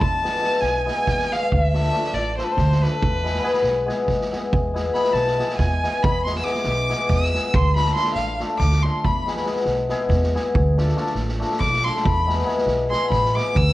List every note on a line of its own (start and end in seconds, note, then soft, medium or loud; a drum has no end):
0.00 0.37 E2 medium
0.00 0.62 A5 loud
0.00 kick medium
0.23 0.40 G#3 medium
0.23 0.39 B3 medium
0.23 0.39 E4 soft
0.23 0.39 G#4 medium
0.23 snare soft
0.35 snare soft
0.41 0.84 G#3 medium
0.41 0.57 B3 medium
0.41 0.58 E4 medium
0.41 0.58 G#4 medium
0.41 snare soft
0.52 snare soft
0.61 0.89 B1 medium
0.61 0.86 G#5 medium
0.61 snare soft
0.85 1.30 G#3 medium
0.85 1.02 B3 medium
0.85 1.02 E4 medium
0.85 1.02 G#4 medium
0.85 1.33 G#5 medium
0.85 snare soft
1.07 1.34 E2 medium
1.07 kick medium
1.07 snare soft
1.19 snare soft
1.31 1.57 G#3 soft
1.31 1.47 B3 medium
1.31 1.47 E4 medium
1.31 1.48 G#4 medium
1.31 1.54 F5 loud
1.31 snare soft
1.52 1.88 D2 medium
1.52 2.15 E5 loud
1.52 kick medium
1.73 1.89 A3 medium
1.73 1.89 D4 soft
1.73 1.89 F4 medium
1.73 1.90 A4 medium
1.73 snare soft
1.84 snare soft
1.92 2.08 A3 medium
1.92 2.08 D4 medium
1.92 2.08 F4 medium
1.92 2.08 A4 medium
1.92 snare soft
2.03 snare soft
2.13 2.40 A1 medium
2.13 2.36 D5 medium
2.13 snare soft
2.37 2.53 A3 medium
2.37 2.53 D4 medium
2.37 2.53 F4 medium
2.37 2.54 A4 medium
2.37 2.45 C5 medium
2.37 snare soft
2.43 2.53 B4 medium
2.52 2.84 C5 medium
2.57 2.84 D2 loud
2.57 kick medium
2.57 snare soft
2.72 snare soft
2.82 2.98 A3 medium
2.82 2.98 D4 medium
2.82 2.99 F4 medium
2.82 2.99 A4 medium
2.82 3.88 B4 loud
2.82 snare soft
3.02 3.39 E2 medium
3.02 kick medium
3.24 3.41 G#3 medium
3.24 3.39 B3 soft
3.24 3.40 E4 medium
3.24 3.40 G#4 medium
3.24 snare soft
3.35 snare soft
3.42 3.85 G#3 medium
3.42 3.58 B3 medium
3.42 3.59 E4 medium
3.42 3.59 G#4 medium
3.42 snare soft
3.54 snare soft
3.62 3.90 B1 medium
3.62 snare soft
3.86 4.30 G#3 medium
3.86 4.03 B3 medium
3.86 4.03 E4 medium
3.86 4.03 G#4 medium
3.86 snare soft
4.07 4.34 E2 medium
4.07 kick medium
4.07 snare soft
4.21 snare soft
4.32 4.58 G#3 medium
4.32 4.48 B3 medium
4.32 4.48 E4 medium
4.32 4.49 G#4 medium
4.32 snare soft
4.53 4.89 E2 medium
4.53 kick medium
4.74 4.93 G#3 medium
4.74 4.90 B3 medium
4.74 4.90 E4 medium
4.74 4.90 G#4 medium
4.74 snare soft
4.94 5.37 G#3 medium
4.94 5.09 B3 medium
4.94 5.10 E4 medium
4.94 5.10 G#4 medium
4.94 5.14 B5 medium
4.94 snare soft
5.04 snare soft
5.13 5.40 B1 medium
5.13 5.56 A5 medium
5.13 snare soft
5.27 snare soft
5.38 5.82 G#3 medium
5.38 5.54 B3 medium
5.38 5.54 E4 medium
5.38 5.55 G#4 medium
5.38 snare soft
5.49 snare soft
5.57 5.86 E2 medium
5.57 6.04 G#5 medium
5.57 kick medium
5.57 snare soft
5.83 6.08 G#3 medium
5.83 5.99 B3 medium
5.83 5.99 E4 medium
5.83 6.00 G#4 medium
5.83 snare soft
6.02 6.40 E2 medium
6.02 6.24 B5 loud
6.02 kick medium
6.25 6.44 G#3 medium
6.25 6.41 B3 medium
6.25 6.42 E4 medium
6.25 6.42 G#4 medium
6.25 6.37 C6 medium
6.25 snare soft
6.36 6.45 E6 medium
6.36 snare soft
6.44 6.88 G#3 medium
6.44 6.60 B3 medium
6.44 6.61 E4 medium
6.44 6.61 G#4 medium
6.44 7.10 D6 loud
6.44 snare soft
6.55 snare soft
6.64 6.92 B1 medium
6.64 snare soft
6.89 7.32 G#3 medium
6.89 7.05 B3 medium
6.89 7.05 E4 medium
6.89 7.05 G#4 medium
6.89 snare soft
7.09 7.37 E2 medium
7.09 7.57 E6 loud
7.09 kick medium
7.09 snare soft
7.22 snare soft
7.33 7.59 G#3 medium
7.33 7.49 B3 soft
7.33 7.50 E4 medium
7.33 7.50 G#4 medium
7.33 snare soft
7.54 7.91 D2 medium
7.54 7.76 C6 loud
7.54 kick medium
7.76 7.91 A3 medium
7.76 7.91 D4 soft
7.76 7.92 F4 medium
7.76 7.92 A4 medium
7.76 7.94 B5 loud
7.76 snare soft
7.85 snare soft
7.95 8.10 A3 medium
7.95 8.11 D4 medium
7.95 8.11 F4 medium
7.95 8.11 A4 medium
7.95 8.13 C6 medium
7.95 snare soft
8.04 snare soft
8.14 8.42 A1 medium
8.14 8.38 F5 medium
8.14 snare soft
8.40 8.55 A3 medium
8.40 8.55 D4 medium
8.40 8.56 F4 medium
8.40 8.56 A4 medium
8.40 snare soft
8.58 8.87 D2 medium
8.58 8.84 D6 loud
8.58 kick medium
8.58 snare soft
8.72 snare soft
8.83 9.00 A3 medium
8.83 9.00 D4 medium
8.83 9.00 F4 medium
8.83 9.01 A4 medium
8.83 9.05 C6 medium
8.83 snare soft
9.04 9.42 E2 medium
9.04 9.46 B5 medium
9.04 kick medium
9.26 9.44 G#3 medium
9.26 9.42 B3 soft
9.26 9.42 E4 medium
9.26 9.43 G#4 medium
9.26 snare soft
9.37 snare soft
9.45 9.88 G#3 medium
9.45 9.61 B3 medium
9.45 9.61 E4 medium
9.45 9.62 G#4 medium
9.45 snare soft
9.56 snare soft
9.65 9.92 B1 medium
9.65 snare soft
9.89 10.33 G#3 medium
9.89 10.06 B3 medium
9.89 10.06 E4 medium
9.89 10.06 G#4 loud
9.89 snare soft
10.09 10.36 E2 loud
10.09 kick medium
10.09 snare soft
10.23 snare soft
10.34 10.60 G#3 medium
10.34 10.50 B3 medium
10.34 10.51 E4 medium
10.34 10.51 G#4 medium
10.34 snare soft
10.54 10.91 D2 loud
10.54 kick medium
10.77 10.92 A3 medium
10.77 10.93 D4 medium
10.77 10.93 F4 medium
10.77 10.93 A4 medium
10.77 snare soft
10.88 snare soft
10.96 11.11 A3 medium
10.96 11.12 D4 medium
10.96 11.12 F4 medium
10.96 11.12 A4 medium
10.96 snare soft
11.06 snare soft
11.15 11.42 A1 medium
11.15 snare soft
11.29 snare soft
11.39 11.56 A3 medium
11.39 11.56 D4 medium
11.39 11.56 F4 medium
11.39 11.57 A4 medium
11.39 snare soft
11.51 snare soft
11.60 11.88 B1 medium
11.60 11.86 D6 loud
11.60 kick medium
11.60 snare soft
11.73 snare soft
11.83 12.00 A3 medium
11.83 12.01 D4 medium
11.83 12.01 F4 medium
11.83 12.01 A4 medium
11.83 11.96 C6 medium
11.83 snare soft
11.96 12.05 C6 medium
11.96 snare soft
12.04 12.42 E2 medium
12.04 12.46 B5 medium
12.04 kick medium
12.26 12.43 G#3 medium
12.26 12.42 B3 medium
12.26 12.43 E4 medium
12.26 12.43 G#4 medium
12.26 snare soft
12.38 snare soft
12.44 12.88 G#3 medium
12.44 12.61 B3 medium
12.44 12.61 E4 medium
12.44 12.62 G#4 medium
12.44 snare soft
12.58 snare soft
12.66 12.93 B1 medium
12.66 snare soft
12.89 13.33 G#3 medium
12.89 13.06 B3 medium
12.89 13.06 E4 medium
12.89 13.06 G#4 medium
12.89 13.09 C6 loud
12.89 snare soft
13.10 13.37 A1 medium
13.10 13.37 B5 medium
13.10 kick medium
13.10 snare soft
13.25 snare soft
13.34 13.61 G#3 medium
13.34 13.51 B3 soft
13.34 13.52 E4 medium
13.34 13.52 G#4 medium
13.34 13.58 D6 loud
13.34 snare soft
13.55 13.73 D2 loud
13.55 13.73 E6 loud
13.55 kick medium